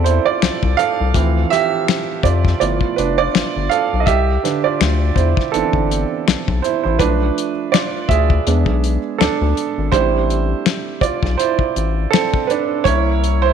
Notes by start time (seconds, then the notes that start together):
Already playing: E2 G3 B3 C4 E4 F4 G4 A4 C5 D5 E5
0.04 E4 C5, closed hi-hat
0.25 F4 D5
0.42 C2, finger snap, snare, closed hi-hat
0.63 C2, kick
0.77 A4 F5, closed hi-hat
1.01 C2
1.14 D2 E3 F3 C4, kick, closed hi-hat
1.50 G4 E5, snare, closed hi-hat
1.88 finger snap, snare, closed hi-hat
2.23 F2 F4 D5, kick, closed hi-hat
2.45 kick, snare
2.60 G1 F3 A3 B3 E4 F4 D5, closed hi-hat
2.81 F1, kick
2.96 F1 D4 B4, closed hi-hat
3.18 F4 D5
3.35 G1, finger snap, snare, closed hi-hat
3.57 G1
3.69 A4 F5, closed hi-hat
3.93 B1
4.00 D#5
4.06 C2 G4 E5, kick, closed hi-hat
4.43 D3 D4 B4, snare, closed hi-hat
4.64 F4 D5
4.81 D2, finger snap, snare, closed hi-hat
5.15 E2 E4 C5, kick, closed hi-hat
5.37 kick, snare
5.52 G1 E3 B3 C4 D4 A4, closed hi-hat
5.73 G1, kick
5.91 closed hi-hat
6.28 B1, finger snap, snare, closed hi-hat
6.48 B1, kick
6.62 E4 C5, closed hi-hat
6.83 A1 E4 C5
6.99 B1 F3 A3 D4 B4, kick, closed hi-hat
7.38 closed hi-hat
7.72 F4 D5, finger snap, snare, closed hi-hat
8.08 D2 G#4 E5, kick, closed hi-hat
8.30 kick
8.46 E2 G#3 B3 D4, closed hi-hat
8.66 B1, kick
8.84 closed hi-hat
9.18 D2 D4 A4, finger snap, snare, closed hi-hat
9.41 D2
9.57 closed hi-hat
9.78 G#1
9.92 A1 G3 A3 C4 D4 E4 C5, kick, closed hi-hat
10.30 closed hi-hat
10.66 finger snap, snare, closed hi-hat
11.01 B1 F4 D5, kick, closed hi-hat
11.23 B1, kick, snare
11.37 E4 C5, closed hi-hat
11.59 kick
11.76 A1, closed hi-hat
12.11 C4 A4, finger snap, snare, closed hi-hat
12.34 kick
12.47 D4 B4, closed hi-hat
12.84 C2 A#3 C#4 E4 C#5, kick, closed hi-hat
13.24 closed hi-hat
13.42 E4 C5